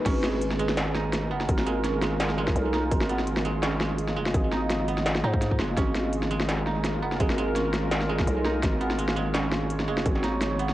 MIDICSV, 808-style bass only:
0, 0, Header, 1, 2, 480
1, 0, Start_track
1, 0, Tempo, 357143
1, 77, Time_signature, 4, 2, 24, 8
1, 14431, End_track
2, 0, Start_track
2, 0, Title_t, "808-style bass"
2, 0, Program_c, 0, 38
2, 78, Note_on_c, 0, 32, 99
2, 1756, Note_on_c, 0, 30, 86
2, 1777, Note_off_c, 0, 32, 0
2, 1979, Note_off_c, 0, 30, 0
2, 1999, Note_on_c, 0, 32, 99
2, 3424, Note_off_c, 0, 32, 0
2, 3436, Note_on_c, 0, 35, 107
2, 3902, Note_off_c, 0, 35, 0
2, 3918, Note_on_c, 0, 32, 99
2, 5597, Note_on_c, 0, 30, 86
2, 5617, Note_off_c, 0, 32, 0
2, 5819, Note_off_c, 0, 30, 0
2, 5838, Note_on_c, 0, 32, 103
2, 7030, Note_off_c, 0, 32, 0
2, 7039, Note_on_c, 0, 44, 78
2, 7516, Note_on_c, 0, 30, 99
2, 7536, Note_off_c, 0, 44, 0
2, 7739, Note_off_c, 0, 30, 0
2, 7759, Note_on_c, 0, 32, 100
2, 9438, Note_on_c, 0, 30, 81
2, 9458, Note_off_c, 0, 32, 0
2, 9660, Note_off_c, 0, 30, 0
2, 9678, Note_on_c, 0, 32, 97
2, 11104, Note_off_c, 0, 32, 0
2, 11118, Note_on_c, 0, 35, 108
2, 11583, Note_off_c, 0, 35, 0
2, 11598, Note_on_c, 0, 32, 101
2, 13276, Note_on_c, 0, 30, 87
2, 13296, Note_off_c, 0, 32, 0
2, 13499, Note_off_c, 0, 30, 0
2, 13519, Note_on_c, 0, 32, 103
2, 14431, Note_off_c, 0, 32, 0
2, 14431, End_track
0, 0, End_of_file